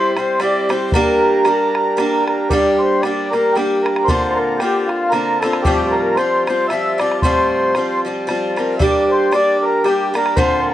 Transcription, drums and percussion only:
0, 0, Header, 1, 2, 480
1, 0, Start_track
1, 0, Tempo, 524476
1, 850, Time_signature, 3, 2, 24, 8
1, 9828, End_track
2, 0, Start_track
2, 0, Title_t, "Bodhran"
2, 151, Note_on_c, 9, 64, 67
2, 243, Note_off_c, 9, 64, 0
2, 364, Note_on_c, 9, 64, 52
2, 456, Note_off_c, 9, 64, 0
2, 641, Note_on_c, 9, 64, 72
2, 733, Note_off_c, 9, 64, 0
2, 841, Note_on_c, 9, 64, 69
2, 933, Note_off_c, 9, 64, 0
2, 1328, Note_on_c, 9, 64, 66
2, 1419, Note_off_c, 9, 64, 0
2, 1601, Note_on_c, 9, 64, 61
2, 1693, Note_off_c, 9, 64, 0
2, 1814, Note_on_c, 9, 64, 59
2, 1906, Note_off_c, 9, 64, 0
2, 2083, Note_on_c, 9, 64, 57
2, 2174, Note_off_c, 9, 64, 0
2, 2290, Note_on_c, 9, 64, 57
2, 2381, Note_off_c, 9, 64, 0
2, 2775, Note_on_c, 9, 64, 63
2, 2866, Note_off_c, 9, 64, 0
2, 3051, Note_on_c, 9, 64, 48
2, 3143, Note_off_c, 9, 64, 0
2, 3262, Note_on_c, 9, 64, 49
2, 3354, Note_off_c, 9, 64, 0
2, 3532, Note_on_c, 9, 64, 67
2, 3623, Note_off_c, 9, 64, 0
2, 3627, Note_on_c, 9, 64, 55
2, 3718, Note_off_c, 9, 64, 0
2, 3735, Note_on_c, 9, 64, 66
2, 3827, Note_off_c, 9, 64, 0
2, 4210, Note_on_c, 9, 64, 63
2, 4301, Note_off_c, 9, 64, 0
2, 4477, Note_on_c, 9, 64, 50
2, 4569, Note_off_c, 9, 64, 0
2, 4695, Note_on_c, 9, 64, 51
2, 4787, Note_off_c, 9, 64, 0
2, 4966, Note_on_c, 9, 64, 69
2, 5058, Note_off_c, 9, 64, 0
2, 5064, Note_on_c, 9, 64, 66
2, 5155, Note_off_c, 9, 64, 0
2, 5169, Note_on_c, 9, 64, 74
2, 5261, Note_off_c, 9, 64, 0
2, 5650, Note_on_c, 9, 64, 59
2, 5742, Note_off_c, 9, 64, 0
2, 5925, Note_on_c, 9, 64, 67
2, 6017, Note_off_c, 9, 64, 0
2, 6132, Note_on_c, 9, 64, 53
2, 6223, Note_off_c, 9, 64, 0
2, 6402, Note_on_c, 9, 64, 67
2, 6494, Note_off_c, 9, 64, 0
2, 6512, Note_on_c, 9, 64, 53
2, 6603, Note_off_c, 9, 64, 0
2, 6610, Note_on_c, 9, 64, 68
2, 6701, Note_off_c, 9, 64, 0
2, 7091, Note_on_c, 9, 64, 61
2, 7182, Note_off_c, 9, 64, 0
2, 7584, Note_on_c, 9, 64, 57
2, 7675, Note_off_c, 9, 64, 0
2, 7847, Note_on_c, 9, 64, 59
2, 7938, Note_off_c, 9, 64, 0
2, 8054, Note_on_c, 9, 64, 75
2, 8145, Note_off_c, 9, 64, 0
2, 8534, Note_on_c, 9, 64, 62
2, 8626, Note_off_c, 9, 64, 0
2, 9020, Note_on_c, 9, 64, 51
2, 9112, Note_off_c, 9, 64, 0
2, 9292, Note_on_c, 9, 64, 72
2, 9383, Note_off_c, 9, 64, 0
2, 9387, Note_on_c, 9, 64, 59
2, 9479, Note_off_c, 9, 64, 0
2, 9489, Note_on_c, 9, 64, 75
2, 9580, Note_off_c, 9, 64, 0
2, 9828, End_track
0, 0, End_of_file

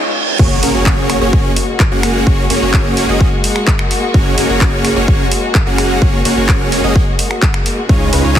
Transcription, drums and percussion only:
0, 0, Header, 1, 2, 480
1, 0, Start_track
1, 0, Key_signature, 6, "major"
1, 0, Tempo, 468750
1, 402, Time_signature, 4, 2, 24, 8
1, 8595, End_track
2, 0, Start_track
2, 0, Title_t, "Drums"
2, 403, Note_on_c, 9, 36, 118
2, 404, Note_on_c, 9, 49, 99
2, 505, Note_off_c, 9, 36, 0
2, 506, Note_off_c, 9, 49, 0
2, 643, Note_on_c, 9, 46, 111
2, 745, Note_off_c, 9, 46, 0
2, 882, Note_on_c, 9, 36, 117
2, 882, Note_on_c, 9, 39, 127
2, 985, Note_off_c, 9, 36, 0
2, 985, Note_off_c, 9, 39, 0
2, 1123, Note_on_c, 9, 26, 67
2, 1123, Note_on_c, 9, 46, 105
2, 1225, Note_off_c, 9, 26, 0
2, 1225, Note_off_c, 9, 46, 0
2, 1362, Note_on_c, 9, 36, 121
2, 1465, Note_off_c, 9, 36, 0
2, 1602, Note_on_c, 9, 46, 108
2, 1704, Note_off_c, 9, 46, 0
2, 1842, Note_on_c, 9, 36, 117
2, 1842, Note_on_c, 9, 39, 127
2, 1944, Note_off_c, 9, 36, 0
2, 1945, Note_off_c, 9, 39, 0
2, 2082, Note_on_c, 9, 26, 79
2, 2082, Note_on_c, 9, 46, 105
2, 2184, Note_off_c, 9, 26, 0
2, 2184, Note_off_c, 9, 46, 0
2, 2322, Note_on_c, 9, 36, 120
2, 2424, Note_off_c, 9, 36, 0
2, 2561, Note_on_c, 9, 46, 107
2, 2664, Note_off_c, 9, 46, 0
2, 2802, Note_on_c, 9, 36, 121
2, 2802, Note_on_c, 9, 39, 127
2, 2904, Note_off_c, 9, 36, 0
2, 2904, Note_off_c, 9, 39, 0
2, 3042, Note_on_c, 9, 46, 110
2, 3144, Note_off_c, 9, 46, 0
2, 3282, Note_on_c, 9, 36, 123
2, 3385, Note_off_c, 9, 36, 0
2, 3522, Note_on_c, 9, 46, 107
2, 3624, Note_off_c, 9, 46, 0
2, 3642, Note_on_c, 9, 26, 67
2, 3745, Note_off_c, 9, 26, 0
2, 3762, Note_on_c, 9, 36, 123
2, 3763, Note_on_c, 9, 39, 127
2, 3865, Note_off_c, 9, 36, 0
2, 3865, Note_off_c, 9, 39, 0
2, 3882, Note_on_c, 9, 26, 80
2, 3985, Note_off_c, 9, 26, 0
2, 4002, Note_on_c, 9, 46, 108
2, 4104, Note_off_c, 9, 46, 0
2, 4242, Note_on_c, 9, 36, 127
2, 4345, Note_off_c, 9, 36, 0
2, 4482, Note_on_c, 9, 46, 118
2, 4585, Note_off_c, 9, 46, 0
2, 4722, Note_on_c, 9, 36, 124
2, 4722, Note_on_c, 9, 39, 124
2, 4824, Note_off_c, 9, 39, 0
2, 4825, Note_off_c, 9, 36, 0
2, 4962, Note_on_c, 9, 26, 62
2, 4962, Note_on_c, 9, 46, 110
2, 5065, Note_off_c, 9, 26, 0
2, 5065, Note_off_c, 9, 46, 0
2, 5203, Note_on_c, 9, 36, 127
2, 5305, Note_off_c, 9, 36, 0
2, 5443, Note_on_c, 9, 46, 113
2, 5545, Note_off_c, 9, 46, 0
2, 5682, Note_on_c, 9, 36, 123
2, 5682, Note_on_c, 9, 39, 123
2, 5784, Note_off_c, 9, 39, 0
2, 5785, Note_off_c, 9, 36, 0
2, 5923, Note_on_c, 9, 26, 75
2, 5923, Note_on_c, 9, 46, 112
2, 6025, Note_off_c, 9, 26, 0
2, 6025, Note_off_c, 9, 46, 0
2, 6162, Note_on_c, 9, 36, 121
2, 6265, Note_off_c, 9, 36, 0
2, 6403, Note_on_c, 9, 46, 112
2, 6505, Note_off_c, 9, 46, 0
2, 6642, Note_on_c, 9, 39, 117
2, 6643, Note_on_c, 9, 36, 126
2, 6745, Note_off_c, 9, 36, 0
2, 6745, Note_off_c, 9, 39, 0
2, 6883, Note_on_c, 9, 46, 107
2, 6985, Note_off_c, 9, 46, 0
2, 7123, Note_on_c, 9, 36, 127
2, 7225, Note_off_c, 9, 36, 0
2, 7362, Note_on_c, 9, 46, 112
2, 7464, Note_off_c, 9, 46, 0
2, 7483, Note_on_c, 9, 26, 64
2, 7585, Note_off_c, 9, 26, 0
2, 7602, Note_on_c, 9, 39, 118
2, 7603, Note_on_c, 9, 36, 121
2, 7705, Note_off_c, 9, 36, 0
2, 7705, Note_off_c, 9, 39, 0
2, 7722, Note_on_c, 9, 26, 82
2, 7824, Note_off_c, 9, 26, 0
2, 7842, Note_on_c, 9, 46, 108
2, 7945, Note_off_c, 9, 46, 0
2, 8083, Note_on_c, 9, 36, 116
2, 8185, Note_off_c, 9, 36, 0
2, 8322, Note_on_c, 9, 46, 107
2, 8425, Note_off_c, 9, 46, 0
2, 8563, Note_on_c, 9, 36, 119
2, 8563, Note_on_c, 9, 39, 118
2, 8595, Note_off_c, 9, 36, 0
2, 8595, Note_off_c, 9, 39, 0
2, 8595, End_track
0, 0, End_of_file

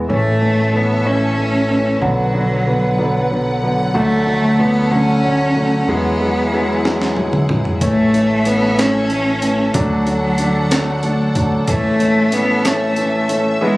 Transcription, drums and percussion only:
0, 0, Header, 1, 2, 480
1, 0, Start_track
1, 0, Key_signature, 3, "major"
1, 0, Tempo, 643777
1, 69, Time_signature, 6, 3, 24, 8
1, 10268, End_track
2, 0, Start_track
2, 0, Title_t, "Drums"
2, 5109, Note_on_c, 9, 38, 43
2, 5184, Note_off_c, 9, 38, 0
2, 5231, Note_on_c, 9, 38, 49
2, 5306, Note_off_c, 9, 38, 0
2, 5342, Note_on_c, 9, 48, 60
2, 5416, Note_off_c, 9, 48, 0
2, 5465, Note_on_c, 9, 47, 69
2, 5540, Note_off_c, 9, 47, 0
2, 5585, Note_on_c, 9, 45, 74
2, 5660, Note_off_c, 9, 45, 0
2, 5706, Note_on_c, 9, 43, 72
2, 5780, Note_off_c, 9, 43, 0
2, 5824, Note_on_c, 9, 36, 78
2, 5825, Note_on_c, 9, 42, 67
2, 5899, Note_off_c, 9, 36, 0
2, 5899, Note_off_c, 9, 42, 0
2, 6070, Note_on_c, 9, 42, 42
2, 6145, Note_off_c, 9, 42, 0
2, 6303, Note_on_c, 9, 42, 57
2, 6378, Note_off_c, 9, 42, 0
2, 6552, Note_on_c, 9, 42, 70
2, 6556, Note_on_c, 9, 38, 90
2, 6627, Note_off_c, 9, 42, 0
2, 6631, Note_off_c, 9, 38, 0
2, 6784, Note_on_c, 9, 42, 43
2, 6859, Note_off_c, 9, 42, 0
2, 7024, Note_on_c, 9, 42, 59
2, 7099, Note_off_c, 9, 42, 0
2, 7263, Note_on_c, 9, 42, 72
2, 7265, Note_on_c, 9, 36, 78
2, 7338, Note_off_c, 9, 42, 0
2, 7339, Note_off_c, 9, 36, 0
2, 7506, Note_on_c, 9, 42, 44
2, 7580, Note_off_c, 9, 42, 0
2, 7739, Note_on_c, 9, 42, 59
2, 7813, Note_off_c, 9, 42, 0
2, 7987, Note_on_c, 9, 42, 74
2, 7991, Note_on_c, 9, 38, 93
2, 8062, Note_off_c, 9, 42, 0
2, 8066, Note_off_c, 9, 38, 0
2, 8223, Note_on_c, 9, 42, 37
2, 8298, Note_off_c, 9, 42, 0
2, 8465, Note_on_c, 9, 42, 49
2, 8467, Note_on_c, 9, 36, 77
2, 8539, Note_off_c, 9, 42, 0
2, 8542, Note_off_c, 9, 36, 0
2, 8705, Note_on_c, 9, 42, 66
2, 8706, Note_on_c, 9, 36, 81
2, 8779, Note_off_c, 9, 42, 0
2, 8781, Note_off_c, 9, 36, 0
2, 8948, Note_on_c, 9, 42, 47
2, 9023, Note_off_c, 9, 42, 0
2, 9186, Note_on_c, 9, 42, 63
2, 9261, Note_off_c, 9, 42, 0
2, 9431, Note_on_c, 9, 42, 86
2, 9435, Note_on_c, 9, 38, 78
2, 9506, Note_off_c, 9, 42, 0
2, 9509, Note_off_c, 9, 38, 0
2, 9666, Note_on_c, 9, 42, 42
2, 9741, Note_off_c, 9, 42, 0
2, 9911, Note_on_c, 9, 42, 56
2, 9985, Note_off_c, 9, 42, 0
2, 10268, End_track
0, 0, End_of_file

